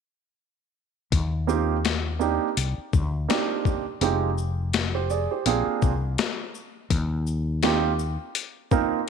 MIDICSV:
0, 0, Header, 1, 5, 480
1, 0, Start_track
1, 0, Key_signature, -3, "major"
1, 0, Tempo, 722892
1, 746, Time_signature, 4, 2, 24, 8
1, 6036, End_track
2, 0, Start_track
2, 0, Title_t, "Grand piano"
2, 0, Program_c, 0, 0
2, 978, Note_on_c, 0, 58, 69
2, 981, Note_on_c, 0, 60, 62
2, 984, Note_on_c, 0, 63, 56
2, 985, Note_on_c, 0, 65, 56
2, 989, Note_on_c, 0, 67, 71
2, 1161, Note_off_c, 0, 58, 0
2, 1163, Note_off_c, 0, 60, 0
2, 1164, Note_off_c, 0, 63, 0
2, 1165, Note_off_c, 0, 65, 0
2, 1167, Note_off_c, 0, 67, 0
2, 1457, Note_on_c, 0, 58, 60
2, 1460, Note_on_c, 0, 60, 54
2, 1462, Note_on_c, 0, 62, 57
2, 1464, Note_on_c, 0, 63, 57
2, 1469, Note_on_c, 0, 67, 64
2, 1640, Note_off_c, 0, 58, 0
2, 1642, Note_off_c, 0, 60, 0
2, 1643, Note_off_c, 0, 62, 0
2, 1644, Note_off_c, 0, 63, 0
2, 1646, Note_off_c, 0, 67, 0
2, 2181, Note_on_c, 0, 58, 60
2, 2183, Note_on_c, 0, 60, 55
2, 2188, Note_on_c, 0, 62, 56
2, 2189, Note_on_c, 0, 63, 55
2, 2193, Note_on_c, 0, 67, 67
2, 2534, Note_off_c, 0, 58, 0
2, 2535, Note_off_c, 0, 60, 0
2, 2538, Note_off_c, 0, 62, 0
2, 2538, Note_off_c, 0, 63, 0
2, 2540, Note_off_c, 0, 67, 0
2, 2663, Note_on_c, 0, 56, 62
2, 2666, Note_on_c, 0, 60, 54
2, 2669, Note_on_c, 0, 63, 55
2, 2671, Note_on_c, 0, 65, 53
2, 2674, Note_on_c, 0, 67, 64
2, 2844, Note_off_c, 0, 56, 0
2, 2845, Note_off_c, 0, 60, 0
2, 2846, Note_off_c, 0, 63, 0
2, 2848, Note_off_c, 0, 65, 0
2, 2849, Note_off_c, 0, 67, 0
2, 3284, Note_on_c, 0, 72, 58
2, 3286, Note_on_c, 0, 67, 45
2, 3381, Note_off_c, 0, 72, 0
2, 3382, Note_off_c, 0, 67, 0
2, 3388, Note_on_c, 0, 74, 65
2, 3392, Note_on_c, 0, 68, 49
2, 3518, Note_off_c, 0, 74, 0
2, 3521, Note_off_c, 0, 68, 0
2, 3525, Note_on_c, 0, 72, 46
2, 3529, Note_on_c, 0, 67, 43
2, 3624, Note_on_c, 0, 58, 69
2, 3625, Note_on_c, 0, 60, 63
2, 3627, Note_on_c, 0, 62, 63
2, 3632, Note_on_c, 0, 65, 67
2, 3633, Note_on_c, 0, 68, 69
2, 3753, Note_off_c, 0, 72, 0
2, 3755, Note_off_c, 0, 67, 0
2, 3920, Note_off_c, 0, 58, 0
2, 3921, Note_off_c, 0, 60, 0
2, 3922, Note_off_c, 0, 62, 0
2, 3924, Note_off_c, 0, 65, 0
2, 3925, Note_off_c, 0, 68, 0
2, 5064, Note_on_c, 0, 58, 64
2, 5067, Note_on_c, 0, 60, 64
2, 5067, Note_on_c, 0, 63, 63
2, 5072, Note_on_c, 0, 65, 68
2, 5075, Note_on_c, 0, 67, 81
2, 5244, Note_off_c, 0, 58, 0
2, 5245, Note_off_c, 0, 60, 0
2, 5246, Note_off_c, 0, 63, 0
2, 5248, Note_off_c, 0, 65, 0
2, 5249, Note_off_c, 0, 67, 0
2, 5784, Note_on_c, 0, 58, 71
2, 5786, Note_on_c, 0, 60, 65
2, 5788, Note_on_c, 0, 63, 72
2, 5792, Note_on_c, 0, 65, 64
2, 5793, Note_on_c, 0, 70, 73
2, 5964, Note_off_c, 0, 58, 0
2, 5965, Note_off_c, 0, 60, 0
2, 5966, Note_off_c, 0, 63, 0
2, 5968, Note_off_c, 0, 65, 0
2, 5969, Note_off_c, 0, 70, 0
2, 6036, End_track
3, 0, Start_track
3, 0, Title_t, "Fretless electric bass"
3, 0, Program_c, 1, 35
3, 744, Note_on_c, 1, 39, 97
3, 1577, Note_off_c, 1, 39, 0
3, 1707, Note_on_c, 1, 36, 89
3, 1833, Note_off_c, 1, 36, 0
3, 1948, Note_on_c, 1, 38, 83
3, 2168, Note_off_c, 1, 38, 0
3, 2664, Note_on_c, 1, 29, 104
3, 3496, Note_off_c, 1, 29, 0
3, 3623, Note_on_c, 1, 34, 78
3, 3751, Note_off_c, 1, 34, 0
3, 3866, Note_on_c, 1, 36, 80
3, 4087, Note_off_c, 1, 36, 0
3, 4586, Note_on_c, 1, 39, 97
3, 5417, Note_off_c, 1, 39, 0
3, 6036, End_track
4, 0, Start_track
4, 0, Title_t, "Muted fretless electric bass strokes"
4, 1845, Note_on_c, 9, 29, 42
4, 1911, Note_off_c, 9, 29, 0
4, 3761, Note_on_c, 9, 29, 41
4, 3828, Note_off_c, 9, 29, 0
4, 6036, End_track
5, 0, Start_track
5, 0, Title_t, "Drums"
5, 744, Note_on_c, 9, 36, 90
5, 745, Note_on_c, 9, 42, 80
5, 811, Note_off_c, 9, 36, 0
5, 812, Note_off_c, 9, 42, 0
5, 988, Note_on_c, 9, 82, 41
5, 1054, Note_off_c, 9, 82, 0
5, 1227, Note_on_c, 9, 42, 49
5, 1232, Note_on_c, 9, 38, 89
5, 1293, Note_off_c, 9, 42, 0
5, 1298, Note_off_c, 9, 38, 0
5, 1465, Note_on_c, 9, 82, 41
5, 1532, Note_off_c, 9, 82, 0
5, 1707, Note_on_c, 9, 42, 81
5, 1774, Note_off_c, 9, 42, 0
5, 1948, Note_on_c, 9, 36, 72
5, 1948, Note_on_c, 9, 82, 43
5, 2014, Note_off_c, 9, 36, 0
5, 2014, Note_off_c, 9, 82, 0
5, 2190, Note_on_c, 9, 42, 57
5, 2196, Note_on_c, 9, 38, 91
5, 2257, Note_off_c, 9, 42, 0
5, 2262, Note_off_c, 9, 38, 0
5, 2426, Note_on_c, 9, 36, 78
5, 2432, Note_on_c, 9, 82, 37
5, 2492, Note_off_c, 9, 36, 0
5, 2498, Note_off_c, 9, 82, 0
5, 2665, Note_on_c, 9, 42, 69
5, 2732, Note_off_c, 9, 42, 0
5, 2907, Note_on_c, 9, 82, 39
5, 2974, Note_off_c, 9, 82, 0
5, 3144, Note_on_c, 9, 42, 52
5, 3149, Note_on_c, 9, 38, 99
5, 3210, Note_off_c, 9, 42, 0
5, 3215, Note_off_c, 9, 38, 0
5, 3386, Note_on_c, 9, 82, 43
5, 3452, Note_off_c, 9, 82, 0
5, 3624, Note_on_c, 9, 42, 83
5, 3691, Note_off_c, 9, 42, 0
5, 3864, Note_on_c, 9, 82, 42
5, 3867, Note_on_c, 9, 36, 64
5, 3931, Note_off_c, 9, 82, 0
5, 3933, Note_off_c, 9, 36, 0
5, 4105, Note_on_c, 9, 42, 58
5, 4110, Note_on_c, 9, 38, 91
5, 4172, Note_off_c, 9, 42, 0
5, 4177, Note_off_c, 9, 38, 0
5, 4347, Note_on_c, 9, 82, 36
5, 4413, Note_off_c, 9, 82, 0
5, 4584, Note_on_c, 9, 36, 93
5, 4585, Note_on_c, 9, 42, 80
5, 4651, Note_off_c, 9, 36, 0
5, 4651, Note_off_c, 9, 42, 0
5, 4825, Note_on_c, 9, 82, 40
5, 4892, Note_off_c, 9, 82, 0
5, 5064, Note_on_c, 9, 42, 50
5, 5069, Note_on_c, 9, 38, 92
5, 5130, Note_off_c, 9, 42, 0
5, 5135, Note_off_c, 9, 38, 0
5, 5305, Note_on_c, 9, 82, 49
5, 5372, Note_off_c, 9, 82, 0
5, 5544, Note_on_c, 9, 42, 88
5, 5611, Note_off_c, 9, 42, 0
5, 5786, Note_on_c, 9, 82, 38
5, 5787, Note_on_c, 9, 36, 73
5, 5852, Note_off_c, 9, 82, 0
5, 5853, Note_off_c, 9, 36, 0
5, 6036, End_track
0, 0, End_of_file